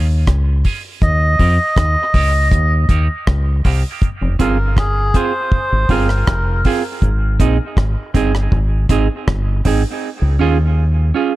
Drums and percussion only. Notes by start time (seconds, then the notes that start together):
0.27 kick, cross-stick, hi-hat pedal
0.65 kick, open hi-hat
1.02 kick, hi-hat pedal
1.39 kick, open hi-hat
1.76 kick, cross-stick, hi-hat pedal
2.14 kick, open hi-hat
2.52 kick, hi-hat pedal
2.89 kick, closed hi-hat
3.27 kick, cross-stick
3.65 kick, open hi-hat
4.02 kick, hi-hat pedal
4.39 kick, closed hi-hat
4.77 kick, cross-stick
5.14 kick, closed hi-hat
5.52 kick
5.89 kick, open hi-hat
6.09 cross-stick
6.27 kick, cross-stick, hi-hat pedal
6.65 kick, open hi-hat
7.02 kick, hi-hat pedal
7.40 kick, closed hi-hat
7.77 kick, cross-stick
8.14 kick, closed hi-hat
8.35 cross-stick
8.52 kick
8.89 kick, closed hi-hat
9.28 kick, cross-stick
9.65 kick, open hi-hat